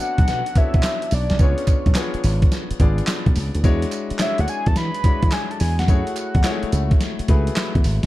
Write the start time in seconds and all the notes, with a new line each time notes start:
Already playing: B3 D4 F#4 A4 C#5 E5
0.00 F#5, closed hi-hat, tambourine
0.18 B1, kick, closed hi-hat
0.28 B2, snare, closed hi-hat, tambourine
0.46 closed hi-hat
0.55 B3 D4 F#4 A4 C#5 E5, muted slap bass stroke, kick, closed hi-hat
0.74 B2, kick, closed hi-hat
0.83 snare, clap, closed hi-hat, tambourine
1.02 closed hi-hat
1.11 B1 D5, open hi-hat, tambourine
1.30 B1, snare, closed hi-hat
1.39 C#2 B3 D4 F4 G#4 C#5, kick, closed hi-hat, tambourine
1.58 closed hi-hat
1.67 kick, clap, closed hi-hat, tambourine
1.86 B1, kick, closed hi-hat
1.95 B3 D4 F4 G#4 C#5, snare, clap, closed hi-hat, tambourine
2.14 muted slap bass stroke, closed hi-hat
2.24 G#1, open hi-hat, tambourine
2.42 kick, closed hi-hat
2.52 snare, closed hi-hat, tambourine
2.71 muted slap bass stroke, closed hi-hat
2.80 G#1 B3 D4 F4 G#4 D5, kick, closed hi-hat
2.98 closed hi-hat
3.07 snare, clap, closed hi-hat, tambourine
3.26 B1, kick, closed hi-hat
3.36 C#2, open hi-hat, tambourine
3.55 D2, closed hi-hat
3.64 E2 G#3 D4 E4 F#4 C#5, kick, closed hi-hat, tambourine
3.82 closed hi-hat
3.92 clap, closed hi-hat, tambourine
4.10 muted slap bass stroke, closed hi-hat
4.19 G#3 D4 E4, snare, clap, closed hi-hat, tambourine
4.20 F#4 C#5 E5, clap
4.38 D2 F#5, closed hi-hat
4.48 G#5, closed hi-hat, tambourine
4.66 E2 A5, kick, closed hi-hat
4.76 E3 B5, snare, closed hi-hat, tambourine
4.94 closed hi-hat
5.04 G#3 D4 E4 F#4 C#5, muted slap bass stroke, kick, closed hi-hat
5.22 E3, kick, closed hi-hat
5.32 G#5, snare, clap, closed hi-hat, tambourine
5.51 A5, closed hi-hat
5.60 E2 G#5, open hi-hat, tambourine
5.79 E2 F#5, snare, closed hi-hat
5.88 F#2 A3 E4 F#4 G#4 C#5, kick, closed hi-hat, tambourine
6.07 closed hi-hat
6.16 clap, closed hi-hat, tambourine
6.35 E2, kick, closed hi-hat
6.44 G#3 E4 F#4 G#4 C#5, snare, clap, closed hi-hat, tambourine
6.51 A3
6.63 muted slap bass stroke, closed hi-hat
6.72 C#2, closed hi-hat, tambourine
6.91 kick, closed hi-hat
7.00 snare, closed hi-hat, tambourine
7.19 muted slap bass stroke, closed hi-hat
7.28 C#2 A3 E4 F#4 G#4 B4, kick, closed hi-hat
7.47 closed hi-hat
7.56 snare, clap, closed hi-hat, tambourine
7.75 E2, kick, closed hi-hat
7.84 G#1, open hi-hat, tambourine